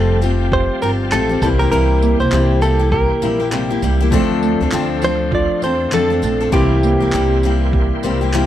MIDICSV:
0, 0, Header, 1, 8, 480
1, 0, Start_track
1, 0, Tempo, 601805
1, 1372, Time_signature, 4, 2, 24, 8
1, 6750, End_track
2, 0, Start_track
2, 0, Title_t, "Tonewheel organ"
2, 0, Program_c, 0, 16
2, 0, Note_on_c, 0, 77, 56
2, 0, Note_on_c, 0, 79, 54
2, 0, Note_on_c, 0, 81, 70
2, 0, Note_on_c, 0, 84, 72
2, 1119, Note_off_c, 0, 81, 0
2, 1120, Note_off_c, 0, 79, 0
2, 1121, Note_off_c, 0, 77, 0
2, 1129, Note_on_c, 0, 79, 57
2, 1132, Note_on_c, 0, 58, 56
2, 1132, Note_on_c, 0, 76, 58
2, 3266, Note_off_c, 0, 79, 0
2, 3268, Note_off_c, 0, 58, 0
2, 3268, Note_off_c, 0, 76, 0
2, 3280, Note_on_c, 0, 69, 65
2, 3281, Note_on_c, 0, 74, 59
2, 3287, Note_on_c, 0, 77, 63
2, 5184, Note_off_c, 0, 84, 0
2, 5186, Note_off_c, 0, 69, 0
2, 5186, Note_off_c, 0, 74, 0
2, 5189, Note_off_c, 0, 77, 0
2, 5198, Note_on_c, 0, 70, 71
2, 5200, Note_on_c, 0, 76, 61
2, 5200, Note_on_c, 0, 79, 64
2, 5203, Note_on_c, 0, 84, 70
2, 6750, Note_off_c, 0, 70, 0
2, 6750, Note_off_c, 0, 76, 0
2, 6750, Note_off_c, 0, 79, 0
2, 6750, Note_off_c, 0, 84, 0
2, 6750, End_track
3, 0, Start_track
3, 0, Title_t, "Clean electric guitar"
3, 0, Program_c, 1, 27
3, 0, Note_on_c, 1, 69, 100
3, 147, Note_off_c, 1, 69, 0
3, 425, Note_on_c, 1, 72, 92
3, 643, Note_off_c, 1, 72, 0
3, 655, Note_on_c, 1, 70, 86
3, 720, Note_off_c, 1, 70, 0
3, 894, Note_on_c, 1, 69, 93
3, 1128, Note_off_c, 1, 69, 0
3, 1137, Note_on_c, 1, 69, 84
3, 1177, Note_off_c, 1, 69, 0
3, 1271, Note_on_c, 1, 70, 86
3, 1358, Note_off_c, 1, 70, 0
3, 1368, Note_on_c, 1, 70, 105
3, 1754, Note_off_c, 1, 70, 0
3, 1757, Note_on_c, 1, 72, 93
3, 2068, Note_off_c, 1, 72, 0
3, 2091, Note_on_c, 1, 69, 92
3, 2326, Note_off_c, 1, 69, 0
3, 2329, Note_on_c, 1, 70, 86
3, 2777, Note_off_c, 1, 70, 0
3, 4024, Note_on_c, 1, 72, 105
3, 4261, Note_off_c, 1, 72, 0
3, 4264, Note_on_c, 1, 74, 108
3, 4481, Note_off_c, 1, 74, 0
3, 4497, Note_on_c, 1, 72, 91
3, 4717, Note_off_c, 1, 72, 0
3, 4737, Note_on_c, 1, 69, 102
3, 5206, Note_off_c, 1, 69, 0
3, 5209, Note_on_c, 1, 67, 97
3, 6750, Note_off_c, 1, 67, 0
3, 6750, End_track
4, 0, Start_track
4, 0, Title_t, "Grand piano"
4, 0, Program_c, 2, 0
4, 0, Control_c, 2, 64, 127
4, 0, Note_on_c, 2, 55, 68
4, 0, Note_on_c, 2, 60, 62
4, 0, Note_on_c, 2, 65, 60
4, 0, Note_on_c, 2, 67, 58
4, 0, Note_on_c, 2, 72, 67
4, 1091, Note_off_c, 2, 55, 0
4, 1095, Note_off_c, 2, 60, 0
4, 1098, Note_off_c, 2, 65, 0
4, 1102, Note_off_c, 2, 67, 0
4, 1107, Note_off_c, 2, 72, 0
4, 1125, Note_on_c, 2, 58, 64
4, 1128, Note_on_c, 2, 60, 55
4, 1137, Note_on_c, 2, 64, 59
4, 1143, Control_c, 2, 64, 0
4, 1145, Note_on_c, 2, 67, 65
4, 1155, Note_on_c, 2, 72, 73
4, 1290, Control_c, 2, 64, 127
4, 3014, Note_off_c, 2, 58, 0
4, 3016, Note_off_c, 2, 60, 0
4, 3020, Note_off_c, 2, 64, 0
4, 3024, Note_off_c, 2, 67, 0
4, 3029, Note_off_c, 2, 72, 0
4, 3274, Note_on_c, 2, 57, 87
4, 3284, Note_on_c, 2, 60, 77
4, 3289, Note_on_c, 2, 62, 76
4, 3300, Control_c, 2, 64, 0
4, 3300, Note_on_c, 2, 65, 79
4, 3309, Note_on_c, 2, 72, 89
4, 3447, Control_c, 2, 64, 127
4, 5170, Note_off_c, 2, 57, 0
4, 5175, Note_off_c, 2, 60, 0
4, 5178, Note_off_c, 2, 62, 0
4, 5183, Note_off_c, 2, 65, 0
4, 5188, Note_off_c, 2, 72, 0
4, 5190, Note_on_c, 2, 58, 62
4, 5197, Note_on_c, 2, 60, 64
4, 5207, Note_on_c, 2, 64, 65
4, 5214, Note_on_c, 2, 67, 66
4, 5219, Control_c, 2, 64, 0
4, 5221, Note_on_c, 2, 72, 81
4, 5347, Control_c, 2, 64, 127
4, 6377, Note_off_c, 2, 58, 0
4, 6380, Note_off_c, 2, 60, 0
4, 6385, Note_off_c, 2, 64, 0
4, 6389, Note_off_c, 2, 67, 0
4, 6393, Note_off_c, 2, 72, 0
4, 6405, Note_on_c, 2, 60, 51
4, 6406, Note_on_c, 2, 58, 58
4, 6411, Note_on_c, 2, 64, 50
4, 6416, Note_on_c, 2, 67, 52
4, 6418, Note_on_c, 2, 72, 59
4, 6750, Note_off_c, 2, 58, 0
4, 6750, Note_off_c, 2, 60, 0
4, 6750, Note_off_c, 2, 64, 0
4, 6750, Note_off_c, 2, 67, 0
4, 6750, Note_off_c, 2, 72, 0
4, 6750, End_track
5, 0, Start_track
5, 0, Title_t, "Steel-string acoustic guitar"
5, 0, Program_c, 3, 25
5, 0, Note_on_c, 3, 53, 75
5, 0, Note_on_c, 3, 57, 74
5, 0, Note_on_c, 3, 60, 76
5, 0, Note_on_c, 3, 65, 82
5, 0, Note_on_c, 3, 67, 87
5, 162, Note_off_c, 3, 57, 0
5, 167, Note_off_c, 3, 60, 0
5, 171, Note_off_c, 3, 65, 0
5, 171, Note_on_c, 3, 57, 54
5, 176, Note_on_c, 3, 60, 65
5, 177, Note_off_c, 3, 53, 0
5, 178, Note_off_c, 3, 67, 0
5, 181, Note_on_c, 3, 65, 56
5, 188, Note_on_c, 3, 67, 63
5, 652, Note_off_c, 3, 57, 0
5, 653, Note_off_c, 3, 65, 0
5, 655, Note_off_c, 3, 60, 0
5, 658, Note_on_c, 3, 60, 52
5, 661, Note_off_c, 3, 67, 0
5, 662, Note_on_c, 3, 65, 63
5, 664, Note_on_c, 3, 67, 69
5, 890, Note_off_c, 3, 60, 0
5, 894, Note_off_c, 3, 65, 0
5, 894, Note_off_c, 3, 67, 0
5, 895, Note_on_c, 3, 53, 79
5, 896, Note_on_c, 3, 57, 80
5, 899, Note_on_c, 3, 60, 73
5, 904, Note_on_c, 3, 65, 87
5, 904, Note_on_c, 3, 67, 79
5, 1022, Note_off_c, 3, 67, 0
5, 1031, Note_on_c, 3, 67, 53
5, 1032, Note_off_c, 3, 65, 0
5, 1038, Note_off_c, 3, 53, 0
5, 1038, Note_off_c, 3, 57, 0
5, 1040, Note_off_c, 3, 60, 0
5, 1041, Note_on_c, 3, 65, 50
5, 1050, Note_on_c, 3, 60, 44
5, 1130, Note_off_c, 3, 67, 0
5, 1135, Note_off_c, 3, 65, 0
5, 1137, Note_on_c, 3, 55, 58
5, 1139, Note_off_c, 3, 60, 0
5, 1144, Note_on_c, 3, 58, 62
5, 1149, Note_on_c, 3, 64, 64
5, 1154, Note_on_c, 3, 67, 64
5, 1262, Note_off_c, 3, 67, 0
5, 1272, Note_on_c, 3, 67, 62
5, 1275, Note_off_c, 3, 64, 0
5, 1278, Note_off_c, 3, 55, 0
5, 1282, Note_off_c, 3, 58, 0
5, 1284, Note_on_c, 3, 64, 50
5, 1291, Note_on_c, 3, 58, 47
5, 1366, Note_off_c, 3, 58, 0
5, 1370, Note_off_c, 3, 64, 0
5, 1370, Note_off_c, 3, 67, 0
5, 1370, Note_on_c, 3, 48, 69
5, 1376, Note_on_c, 3, 55, 80
5, 1376, Note_on_c, 3, 58, 79
5, 1379, Note_on_c, 3, 64, 74
5, 1381, Note_on_c, 3, 67, 90
5, 1744, Note_off_c, 3, 67, 0
5, 1751, Note_off_c, 3, 64, 0
5, 1754, Note_off_c, 3, 48, 0
5, 1754, Note_on_c, 3, 67, 47
5, 1757, Note_off_c, 3, 55, 0
5, 1757, Note_off_c, 3, 58, 0
5, 1760, Note_on_c, 3, 64, 44
5, 1769, Note_on_c, 3, 58, 43
5, 1850, Note_off_c, 3, 67, 0
5, 1851, Note_off_c, 3, 58, 0
5, 1852, Note_off_c, 3, 64, 0
5, 1855, Note_on_c, 3, 48, 77
5, 1856, Note_on_c, 3, 55, 74
5, 1861, Note_on_c, 3, 58, 80
5, 1861, Note_on_c, 3, 64, 78
5, 1864, Note_on_c, 3, 67, 76
5, 2076, Note_off_c, 3, 55, 0
5, 2080, Note_off_c, 3, 58, 0
5, 2085, Note_on_c, 3, 55, 53
5, 2088, Note_off_c, 3, 64, 0
5, 2089, Note_on_c, 3, 58, 62
5, 2091, Note_off_c, 3, 67, 0
5, 2093, Note_off_c, 3, 48, 0
5, 2097, Note_on_c, 3, 64, 59
5, 2100, Note_on_c, 3, 67, 63
5, 2219, Note_off_c, 3, 67, 0
5, 2227, Note_off_c, 3, 64, 0
5, 2229, Note_on_c, 3, 67, 59
5, 2232, Note_off_c, 3, 55, 0
5, 2232, Note_off_c, 3, 58, 0
5, 2237, Note_on_c, 3, 64, 49
5, 2241, Note_on_c, 3, 58, 41
5, 2564, Note_off_c, 3, 58, 0
5, 2567, Note_off_c, 3, 67, 0
5, 2567, Note_on_c, 3, 55, 68
5, 2568, Note_off_c, 3, 64, 0
5, 2573, Note_on_c, 3, 58, 66
5, 2578, Note_on_c, 3, 64, 64
5, 2586, Note_on_c, 3, 67, 68
5, 2699, Note_off_c, 3, 67, 0
5, 2706, Note_off_c, 3, 64, 0
5, 2709, Note_on_c, 3, 67, 52
5, 2713, Note_off_c, 3, 55, 0
5, 2715, Note_off_c, 3, 58, 0
5, 2715, Note_on_c, 3, 64, 42
5, 2725, Note_on_c, 3, 58, 39
5, 2800, Note_off_c, 3, 64, 0
5, 2801, Note_off_c, 3, 58, 0
5, 2802, Note_on_c, 3, 48, 73
5, 2806, Note_off_c, 3, 67, 0
5, 2808, Note_on_c, 3, 55, 74
5, 2810, Note_on_c, 3, 64, 76
5, 2811, Note_on_c, 3, 58, 72
5, 2815, Note_on_c, 3, 67, 88
5, 2945, Note_off_c, 3, 67, 0
5, 2946, Note_off_c, 3, 64, 0
5, 2950, Note_off_c, 3, 48, 0
5, 2953, Note_off_c, 3, 55, 0
5, 2954, Note_off_c, 3, 58, 0
5, 2955, Note_on_c, 3, 67, 59
5, 2956, Note_on_c, 3, 64, 57
5, 2964, Note_on_c, 3, 58, 47
5, 3048, Note_off_c, 3, 58, 0
5, 3050, Note_off_c, 3, 67, 0
5, 3051, Note_off_c, 3, 64, 0
5, 3054, Note_on_c, 3, 55, 64
5, 3057, Note_on_c, 3, 58, 66
5, 3061, Note_on_c, 3, 64, 71
5, 3064, Note_on_c, 3, 67, 72
5, 3185, Note_off_c, 3, 67, 0
5, 3194, Note_on_c, 3, 67, 77
5, 3196, Note_off_c, 3, 55, 0
5, 3196, Note_off_c, 3, 64, 0
5, 3197, Note_off_c, 3, 58, 0
5, 3205, Note_on_c, 3, 64, 59
5, 3210, Note_on_c, 3, 58, 54
5, 3286, Note_on_c, 3, 50, 97
5, 3290, Note_off_c, 3, 67, 0
5, 3292, Note_on_c, 3, 53, 86
5, 3294, Note_off_c, 3, 58, 0
5, 3295, Note_off_c, 3, 64, 0
5, 3297, Note_on_c, 3, 60, 96
5, 3300, Note_on_c, 3, 69, 108
5, 3302, Note_on_c, 3, 62, 97
5, 3666, Note_off_c, 3, 69, 0
5, 3671, Note_off_c, 3, 50, 0
5, 3675, Note_off_c, 3, 53, 0
5, 3675, Note_on_c, 3, 69, 52
5, 3677, Note_off_c, 3, 60, 0
5, 3677, Note_off_c, 3, 62, 0
5, 3687, Note_on_c, 3, 62, 55
5, 3692, Note_on_c, 3, 60, 50
5, 3764, Note_off_c, 3, 60, 0
5, 3766, Note_off_c, 3, 62, 0
5, 3766, Note_on_c, 3, 50, 88
5, 3770, Note_off_c, 3, 69, 0
5, 3773, Note_on_c, 3, 53, 91
5, 3774, Note_on_c, 3, 60, 102
5, 3776, Note_on_c, 3, 62, 99
5, 3779, Note_on_c, 3, 69, 99
5, 3995, Note_off_c, 3, 53, 0
5, 4004, Note_on_c, 3, 53, 60
5, 4006, Note_off_c, 3, 60, 0
5, 4007, Note_off_c, 3, 62, 0
5, 4008, Note_off_c, 3, 50, 0
5, 4014, Note_off_c, 3, 69, 0
5, 4016, Note_on_c, 3, 60, 65
5, 4016, Note_on_c, 3, 62, 59
5, 4024, Note_on_c, 3, 69, 66
5, 4486, Note_off_c, 3, 62, 0
5, 4487, Note_off_c, 3, 53, 0
5, 4490, Note_off_c, 3, 60, 0
5, 4493, Note_off_c, 3, 69, 0
5, 4493, Note_on_c, 3, 60, 62
5, 4496, Note_on_c, 3, 62, 62
5, 4503, Note_on_c, 3, 69, 67
5, 4718, Note_off_c, 3, 60, 0
5, 4720, Note_off_c, 3, 62, 0
5, 4721, Note_on_c, 3, 50, 72
5, 4722, Note_off_c, 3, 69, 0
5, 4728, Note_on_c, 3, 53, 82
5, 4728, Note_on_c, 3, 60, 88
5, 4729, Note_on_c, 3, 62, 88
5, 4732, Note_on_c, 3, 69, 76
5, 4857, Note_off_c, 3, 69, 0
5, 4867, Note_on_c, 3, 69, 54
5, 4868, Note_off_c, 3, 62, 0
5, 4869, Note_off_c, 3, 50, 0
5, 4873, Note_off_c, 3, 53, 0
5, 4873, Note_off_c, 3, 60, 0
5, 4878, Note_on_c, 3, 62, 54
5, 4885, Note_on_c, 3, 60, 48
5, 4961, Note_off_c, 3, 60, 0
5, 4961, Note_on_c, 3, 53, 56
5, 4963, Note_off_c, 3, 62, 0
5, 4966, Note_off_c, 3, 69, 0
5, 4970, Note_on_c, 3, 60, 56
5, 4973, Note_on_c, 3, 62, 64
5, 4979, Note_on_c, 3, 69, 63
5, 5099, Note_off_c, 3, 69, 0
5, 5105, Note_off_c, 3, 62, 0
5, 5109, Note_off_c, 3, 53, 0
5, 5109, Note_on_c, 3, 69, 59
5, 5114, Note_off_c, 3, 60, 0
5, 5115, Note_on_c, 3, 62, 59
5, 5126, Note_on_c, 3, 60, 54
5, 5200, Note_off_c, 3, 60, 0
5, 5200, Note_on_c, 3, 48, 82
5, 5203, Note_on_c, 3, 55, 78
5, 5203, Note_on_c, 3, 58, 73
5, 5207, Note_off_c, 3, 62, 0
5, 5207, Note_off_c, 3, 69, 0
5, 5210, Note_on_c, 3, 64, 85
5, 5214, Note_on_c, 3, 67, 88
5, 5577, Note_off_c, 3, 67, 0
5, 5586, Note_on_c, 3, 67, 52
5, 5587, Note_off_c, 3, 64, 0
5, 5589, Note_off_c, 3, 48, 0
5, 5591, Note_off_c, 3, 55, 0
5, 5591, Note_off_c, 3, 58, 0
5, 5597, Note_on_c, 3, 64, 47
5, 5601, Note_on_c, 3, 58, 46
5, 5686, Note_off_c, 3, 58, 0
5, 5686, Note_off_c, 3, 67, 0
5, 5690, Note_on_c, 3, 48, 70
5, 5691, Note_off_c, 3, 64, 0
5, 5693, Note_on_c, 3, 55, 68
5, 5695, Note_on_c, 3, 58, 78
5, 5701, Note_on_c, 3, 64, 72
5, 5705, Note_on_c, 3, 67, 86
5, 5923, Note_off_c, 3, 55, 0
5, 5930, Note_off_c, 3, 48, 0
5, 5933, Note_off_c, 3, 58, 0
5, 5933, Note_on_c, 3, 55, 55
5, 5936, Note_off_c, 3, 64, 0
5, 5938, Note_off_c, 3, 67, 0
5, 5943, Note_on_c, 3, 58, 66
5, 5948, Note_on_c, 3, 64, 68
5, 5950, Note_on_c, 3, 67, 65
5, 6405, Note_off_c, 3, 55, 0
5, 6405, Note_off_c, 3, 58, 0
5, 6408, Note_on_c, 3, 55, 68
5, 6410, Note_off_c, 3, 64, 0
5, 6415, Note_on_c, 3, 58, 72
5, 6420, Note_on_c, 3, 64, 72
5, 6423, Note_off_c, 3, 67, 0
5, 6426, Note_on_c, 3, 67, 75
5, 6538, Note_off_c, 3, 67, 0
5, 6548, Note_on_c, 3, 67, 56
5, 6549, Note_off_c, 3, 64, 0
5, 6554, Note_off_c, 3, 55, 0
5, 6554, Note_off_c, 3, 58, 0
5, 6559, Note_on_c, 3, 64, 51
5, 6563, Note_on_c, 3, 58, 47
5, 6647, Note_off_c, 3, 58, 0
5, 6647, Note_off_c, 3, 64, 0
5, 6648, Note_off_c, 3, 67, 0
5, 6649, Note_on_c, 3, 48, 83
5, 6654, Note_on_c, 3, 55, 82
5, 6656, Note_on_c, 3, 58, 84
5, 6657, Note_on_c, 3, 64, 97
5, 6659, Note_on_c, 3, 67, 88
5, 6750, Note_off_c, 3, 48, 0
5, 6750, Note_off_c, 3, 55, 0
5, 6750, Note_off_c, 3, 58, 0
5, 6750, Note_off_c, 3, 64, 0
5, 6750, Note_off_c, 3, 67, 0
5, 6750, End_track
6, 0, Start_track
6, 0, Title_t, "Nylon-string guitar"
6, 0, Program_c, 4, 24
6, 0, Note_on_c, 4, 53, 79
6, 0, Note_on_c, 4, 57, 57
6, 0, Note_on_c, 4, 67, 59
6, 177, Note_on_c, 4, 60, 57
6, 411, Note_off_c, 4, 67, 0
6, 415, Note_on_c, 4, 67, 61
6, 650, Note_off_c, 4, 60, 0
6, 654, Note_on_c, 4, 60, 62
6, 890, Note_off_c, 4, 67, 0
6, 894, Note_on_c, 4, 67, 68
6, 1133, Note_off_c, 4, 53, 0
6, 1136, Note_on_c, 4, 52, 81
6, 1191, Note_off_c, 4, 57, 0
6, 1365, Note_off_c, 4, 52, 0
6, 1374, Note_on_c, 4, 52, 79
6, 1615, Note_on_c, 4, 58, 67
6, 1639, Note_off_c, 4, 60, 0
6, 1849, Note_off_c, 4, 67, 0
6, 1852, Note_on_c, 4, 67, 61
6, 2100, Note_on_c, 4, 60, 60
6, 2327, Note_off_c, 4, 67, 0
6, 2336, Note_on_c, 4, 67, 69
6, 2568, Note_off_c, 4, 60, 0
6, 2571, Note_on_c, 4, 60, 64
6, 2801, Note_off_c, 4, 67, 0
6, 2810, Note_on_c, 4, 67, 65
6, 3043, Note_off_c, 4, 58, 0
6, 3052, Note_on_c, 4, 58, 66
6, 3289, Note_off_c, 4, 58, 0
6, 3291, Note_off_c, 4, 52, 0
6, 3293, Note_on_c, 4, 57, 89
6, 3347, Note_off_c, 4, 67, 0
6, 3520, Note_off_c, 4, 57, 0
6, 3530, Note_on_c, 4, 57, 57
6, 3767, Note_on_c, 4, 65, 56
6, 4003, Note_off_c, 4, 60, 0
6, 4006, Note_on_c, 4, 60, 57
6, 4239, Note_off_c, 4, 65, 0
6, 4249, Note_on_c, 4, 65, 76
6, 4488, Note_off_c, 4, 60, 0
6, 4492, Note_on_c, 4, 60, 64
6, 4722, Note_off_c, 4, 65, 0
6, 4731, Note_on_c, 4, 65, 72
6, 4960, Note_off_c, 4, 57, 0
6, 4970, Note_on_c, 4, 57, 66
6, 5212, Note_on_c, 4, 52, 90
6, 5268, Note_off_c, 4, 57, 0
6, 5268, Note_off_c, 4, 65, 0
6, 5454, Note_on_c, 4, 58, 61
6, 5478, Note_off_c, 4, 60, 0
6, 5693, Note_on_c, 4, 67, 57
6, 5936, Note_on_c, 4, 60, 56
6, 6171, Note_off_c, 4, 67, 0
6, 6174, Note_on_c, 4, 67, 69
6, 6412, Note_off_c, 4, 60, 0
6, 6415, Note_on_c, 4, 60, 58
6, 6653, Note_off_c, 4, 67, 0
6, 6656, Note_on_c, 4, 67, 68
6, 6750, Note_off_c, 4, 52, 0
6, 6750, Note_off_c, 4, 58, 0
6, 6750, Note_off_c, 4, 60, 0
6, 6750, Note_off_c, 4, 67, 0
6, 6750, End_track
7, 0, Start_track
7, 0, Title_t, "Upright bass"
7, 0, Program_c, 5, 32
7, 0, Note_on_c, 5, 29, 107
7, 528, Note_off_c, 5, 29, 0
7, 655, Note_on_c, 5, 31, 96
7, 875, Note_off_c, 5, 31, 0
7, 890, Note_on_c, 5, 33, 95
7, 1112, Note_off_c, 5, 33, 0
7, 1132, Note_on_c, 5, 36, 100
7, 1353, Note_off_c, 5, 36, 0
7, 1371, Note_on_c, 5, 36, 105
7, 1724, Note_off_c, 5, 36, 0
7, 1753, Note_on_c, 5, 36, 98
7, 1842, Note_off_c, 5, 36, 0
7, 1851, Note_on_c, 5, 36, 111
7, 2443, Note_off_c, 5, 36, 0
7, 2572, Note_on_c, 5, 34, 100
7, 3019, Note_off_c, 5, 34, 0
7, 3050, Note_on_c, 5, 36, 106
7, 3270, Note_off_c, 5, 36, 0
7, 3286, Note_on_c, 5, 38, 120
7, 3641, Note_off_c, 5, 38, 0
7, 3672, Note_on_c, 5, 38, 99
7, 3761, Note_off_c, 5, 38, 0
7, 3766, Note_on_c, 5, 38, 106
7, 4360, Note_off_c, 5, 38, 0
7, 4484, Note_on_c, 5, 40, 101
7, 4707, Note_off_c, 5, 40, 0
7, 4723, Note_on_c, 5, 41, 96
7, 4947, Note_off_c, 5, 41, 0
7, 4965, Note_on_c, 5, 34, 92
7, 5188, Note_off_c, 5, 34, 0
7, 5207, Note_on_c, 5, 36, 110
7, 5562, Note_off_c, 5, 36, 0
7, 5597, Note_on_c, 5, 36, 91
7, 5684, Note_off_c, 5, 36, 0
7, 5698, Note_on_c, 5, 36, 102
7, 6288, Note_off_c, 5, 36, 0
7, 6413, Note_on_c, 5, 36, 92
7, 6750, Note_off_c, 5, 36, 0
7, 6750, End_track
8, 0, Start_track
8, 0, Title_t, "Drums"
8, 177, Note_on_c, 9, 54, 67
8, 256, Note_off_c, 9, 54, 0
8, 413, Note_on_c, 9, 36, 102
8, 493, Note_off_c, 9, 36, 0
8, 652, Note_on_c, 9, 54, 56
8, 732, Note_off_c, 9, 54, 0
8, 891, Note_on_c, 9, 39, 100
8, 971, Note_off_c, 9, 39, 0
8, 1131, Note_on_c, 9, 36, 108
8, 1134, Note_on_c, 9, 54, 73
8, 1211, Note_off_c, 9, 36, 0
8, 1214, Note_off_c, 9, 54, 0
8, 1615, Note_on_c, 9, 54, 61
8, 1694, Note_off_c, 9, 54, 0
8, 1849, Note_on_c, 9, 39, 123
8, 1928, Note_off_c, 9, 39, 0
8, 2093, Note_on_c, 9, 54, 57
8, 2172, Note_off_c, 9, 54, 0
8, 2328, Note_on_c, 9, 36, 118
8, 2407, Note_off_c, 9, 36, 0
8, 2569, Note_on_c, 9, 54, 60
8, 2649, Note_off_c, 9, 54, 0
8, 2809, Note_on_c, 9, 39, 101
8, 2889, Note_off_c, 9, 39, 0
8, 3049, Note_on_c, 9, 54, 69
8, 3129, Note_off_c, 9, 54, 0
8, 3285, Note_on_c, 9, 36, 108
8, 3364, Note_off_c, 9, 36, 0
8, 3530, Note_on_c, 9, 54, 66
8, 3609, Note_off_c, 9, 54, 0
8, 3761, Note_on_c, 9, 39, 119
8, 3840, Note_off_c, 9, 39, 0
8, 4001, Note_on_c, 9, 54, 66
8, 4081, Note_off_c, 9, 54, 0
8, 4242, Note_on_c, 9, 36, 109
8, 4322, Note_off_c, 9, 36, 0
8, 4483, Note_on_c, 9, 54, 59
8, 4562, Note_off_c, 9, 54, 0
8, 4722, Note_on_c, 9, 39, 105
8, 4801, Note_off_c, 9, 39, 0
8, 4966, Note_on_c, 9, 54, 77
8, 5046, Note_off_c, 9, 54, 0
8, 5204, Note_on_c, 9, 36, 111
8, 5284, Note_off_c, 9, 36, 0
8, 5450, Note_on_c, 9, 54, 65
8, 5529, Note_off_c, 9, 54, 0
8, 5682, Note_on_c, 9, 39, 114
8, 5761, Note_off_c, 9, 39, 0
8, 5928, Note_on_c, 9, 54, 63
8, 6008, Note_off_c, 9, 54, 0
8, 6166, Note_on_c, 9, 36, 109
8, 6246, Note_off_c, 9, 36, 0
8, 6404, Note_on_c, 9, 54, 64
8, 6484, Note_off_c, 9, 54, 0
8, 6648, Note_on_c, 9, 39, 106
8, 6727, Note_off_c, 9, 39, 0
8, 6750, End_track
0, 0, End_of_file